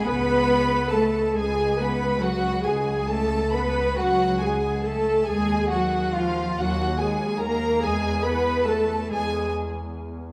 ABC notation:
X:1
M:12/8
L:1/8
Q:3/8=47
K:C#phr
V:1 name="Violin section"
b2 a g b f g a b f g a | g f ^e f g ^a g b =a g z2 |]
V:2 name="Viola section"
B2 A G B F G A B F G A | G F ^E F G ^A G B =A G z2 |]
V:3 name="Violin section"
B2 A G B F G A B F G A | G F ^E F G ^A G B =A G z2 |]
V:4 name="Cello section" clef=bass
B,2 A, G, B, F, G, A, B, F, G, A, | G, F, ^E, F, G, ^A, G, B, =A, G, z2 |]
V:5 name="Double bass section" clef=bass
C,,3 C,,3 C,,3 C,,3 | ^D,,3 D,,3 E,,3 E,,3 |]